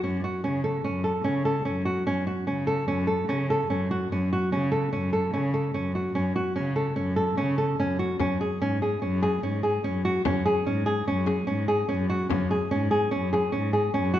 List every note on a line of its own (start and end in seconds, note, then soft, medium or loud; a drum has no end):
0.03 0.20 F#2 loud
0.03 0.20 C#4 medium
0.24 0.41 F#4 medium
0.44 0.78 C#3 medium
0.44 0.61 C#4 medium
0.64 0.81 A4 medium
0.84 1.19 F#2 medium
0.84 1.01 C#4 medium
1.04 1.21 A4 medium
1.24 1.59 C#3 medium
1.24 1.42 C#4 medium
1.45 1.62 A4 medium
1.65 2.00 F#2 medium
1.65 1.82 C#4 medium
1.85 2.03 F#4 medium
2.07 2.24 F#2 medium
2.07 2.24 C#4 medium
2.27 2.44 F#4 medium
2.47 2.82 C#3 medium
2.47 2.64 C#4 medium
2.67 2.84 A4 medium
2.87 3.21 F#2 loud
2.87 3.05 C#4 medium
3.07 3.25 A4 medium
3.28 3.62 C#3 medium
3.28 3.46 C#4 medium
3.50 3.67 A4 medium
3.68 4.03 F#2 medium
3.68 3.87 C#4 medium
3.91 4.07 F#4 medium
4.10 4.27 F#2 loud
4.10 4.28 C#4 medium
4.33 4.49 F#4 medium
4.52 4.86 C#3 medium
4.52 4.69 C#4 medium
4.72 4.89 A4 medium
4.93 5.26 F#2 medium
4.93 5.09 C#4 medium
5.13 5.30 A4 medium
5.33 5.68 C#3 medium
5.33 5.50 C#4 medium
5.54 5.71 A4 medium
5.74 6.09 F#2 medium
5.74 5.91 C#4 medium
5.95 6.12 F#4 medium
6.14 6.32 F#2 loud
6.14 6.32 C#4 medium
6.36 6.52 F#4 medium
6.56 6.90 C#3 medium
6.56 6.73 C#4 medium
6.76 6.93 A4 medium
6.96 7.31 F#2 loud
6.96 7.13 C#4 medium
7.16 7.34 A4 medium
7.37 7.72 C#3 medium
7.37 7.54 C#4 medium
7.58 7.75 A4 medium
7.79 8.12 F#2 medium
7.79 7.96 C#4 medium
7.99 8.16 F#4 medium
8.19 8.36 F#2 loud
8.19 8.37 C#4 medium
8.19 frame drum medium
8.41 8.57 G#4 medium
8.60 8.94 G#2 medium
8.60 8.78 C#4 medium
8.82 8.99 G#4 medium
9.00 9.35 F#2 loud
9.00 9.19 C#4 medium
9.22 9.39 G#4 medium
9.22 frame drum soft
9.42 9.76 G#2 medium
9.42 9.60 C#4 medium
9.63 9.80 G#4 medium
9.84 10.17 F#2 medium
9.84 10.01 C#4 medium
9.84 frame drum soft
10.05 10.21 F#4 medium
10.24 10.41 F#2 medium
10.24 10.42 C#4 medium
10.24 frame drum medium
10.46 10.62 G#4 medium
10.65 10.99 G#2 medium
10.65 10.83 C#4 medium
10.86 11.03 G#4 medium
11.06 11.40 F#2 loud
11.06 11.24 C#4 medium
11.26 11.44 G#4 medium
11.26 frame drum soft
11.47 11.81 G#2 medium
11.47 11.64 C#4 medium
11.68 11.85 G#4 medium
11.89 12.23 F#2 loud
11.89 12.06 C#4 medium
11.89 frame drum soft
12.10 12.26 F#4 medium
12.29 12.47 F#2 loud
12.29 12.47 C#4 medium
12.29 frame drum medium
12.51 12.67 G#4 medium
12.71 13.05 G#2 medium
12.71 12.88 C#4 medium
12.91 13.08 G#4 medium
13.11 13.46 F#2 loud
13.11 13.28 C#4 medium
13.33 13.50 G#4 medium
13.33 frame drum soft
13.52 13.87 G#2 medium
13.52 13.70 C#4 medium
13.73 13.90 G#4 medium
13.94 14.20 F#2 loud
13.94 14.11 C#4 medium
13.94 frame drum soft
14.14 14.20 F#4 medium